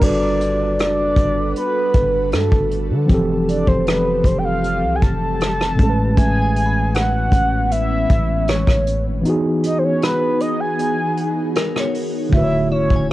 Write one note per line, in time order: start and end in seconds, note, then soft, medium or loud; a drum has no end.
0.00 0.80 G1 loud
0.00 3.04 G3 medium
0.00 3.07 G3 medium
0.00 3.05 D4 medium
0.00 3.07 D4 medium
0.00 3.06 F#4 medium
0.00 3.07 F#4 medium
0.00 5.75 A4 medium
0.00 3.07 B4 loud
0.00 0.79 D5 loud
0.00 kick loud
0.00 crash medium
0.04 3.07 A4 medium
0.04 3.08 B4 medium
0.41 closed hi-hat medium
0.78 1.15 F#1 medium
0.78 1.53 D5 loud
0.78 cross-stick loud
0.78 closed hi-hat medium
1.16 1.54 G1 loud
1.16 kick medium
1.16 closed hi-hat medium
1.56 2.29 B4 loud
1.56 closed hi-hat medium
1.94 2.34 G1 loud
1.94 kick medium
1.94 closed hi-hat medium
2.32 2.51 G2 medium
2.32 2.87 A4 medium
2.32 cross-stick loud
2.32 closed hi-hat medium
2.52 2.92 G1 medium
2.52 kick loud
2.71 closed hi-hat medium
2.90 3.09 D3 loud
3.06 3.65 F1 loud
3.06 5.75 E3 medium
3.06 5.73 F3 medium
3.06 5.76 G3 medium
3.06 5.74 C4 medium
3.06 5.76 C4 medium
3.06 5.76 G4 medium
3.06 kick medium
3.06 closed hi-hat medium
3.12 5.76 G4 medium
3.12 5.77 A4 medium
3.48 3.69 D5 medium
3.48 closed hi-hat medium
3.67 4.23 F1 loud
3.67 3.80 C5 medium
3.67 kick medium
3.80 3.88 C5 medium
3.87 4.28 B4 medium
3.87 cross-stick loud
3.87 closed hi-hat medium
4.24 4.84 F1 loud
4.24 4.38 C5 medium
4.24 kick medium
4.24 closed hi-hat medium
4.38 4.46 G5 medium
4.45 4.97 F5 loud
4.64 closed hi-hat medium
4.83 5.01 C2 medium
4.96 5.04 G#5 medium
5.02 5.76 F1 loud
5.02 6.17 A5 loud
5.02 kick medium
5.02 closed hi-hat medium
5.40 cross-stick loud
5.40 closed hi-hat medium
5.61 cross-stick loud
5.75 8.81 A2 medium
5.75 9.22 E3 medium
5.75 8.82 A3 medium
5.75 9.21 B3 medium
5.75 9.21 C#4 medium
5.79 6.16 A1 loud
5.79 8.84 G#3 medium
5.79 8.83 C#4 medium
5.79 kick medium
5.79 closed hi-hat medium
5.83 5.88 A4 medium
5.90 8.88 B4 medium
6.17 7.29 A1 loud
6.17 6.94 E5 medium
6.17 6.96 G#5 loud
6.17 kick loud
6.17 closed hi-hat medium
6.42 7.16 G#5 soft
6.56 closed hi-hat medium
6.66 7.37 B5 medium
6.94 7.71 F#5 loud
6.94 cross-stick loud
6.94 closed hi-hat medium
7.32 8.06 A1 loud
7.32 kick medium
7.32 closed hi-hat medium
7.71 8.50 E5 loud
7.71 closed hi-hat medium
8.10 8.65 A1 loud
8.10 kick loud
8.10 closed hi-hat medium
8.48 9.06 C#5 medium
8.48 cross-stick loud
8.48 closed hi-hat medium
8.67 9.07 A1 loud
8.67 kick medium
8.67 cross-stick loud
8.87 closed hi-hat medium
9.06 9.24 G#1 medium
9.21 12.27 E3 medium
9.21 12.28 B3 medium
9.21 closed hi-hat medium
9.25 12.30 E3 medium
9.25 12.30 B3 medium
9.25 12.29 D#4 medium
9.25 12.30 D#4 medium
9.25 12.30 F#4 medium
9.25 12.30 G#4 loud
9.30 12.31 G#4 medium
9.64 9.78 D#5 medium
9.64 closed hi-hat medium
9.78 9.85 C5 medium
9.84 10.03 C#5 medium
10.02 10.42 B4 medium
10.02 cross-stick loud
10.02 closed hi-hat medium
10.40 10.62 D#5 loud
10.40 closed hi-hat medium
10.60 11.75 G#5 loud
10.79 closed hi-hat medium
11.17 closed hi-hat medium
11.55 12.32 A#4 medium
11.55 cross-stick loud
11.55 closed hi-hat medium
11.76 12.54 C#5 medium
11.76 cross-stick loud
11.95 open hi-hat medium
12.29 12.72 D1 loud
12.29 13.13 D3 medium
12.29 13.13 A3 medium
12.29 13.13 D4 medium
12.29 13.13 E4 medium
12.29 13.13 F#4 loud
12.29 12.69 E5 loud
12.29 kick loud
12.33 13.13 A3 medium
12.33 13.13 F#4 medium
12.33 12.41 B4 medium
12.44 13.13 C#5 medium
12.71 12.89 C#1 loud
12.71 13.07 C#5 medium
12.71 13.13 E5 medium
12.90 13.13 D1 loud
12.90 kick medium
12.96 13.13 G#5 medium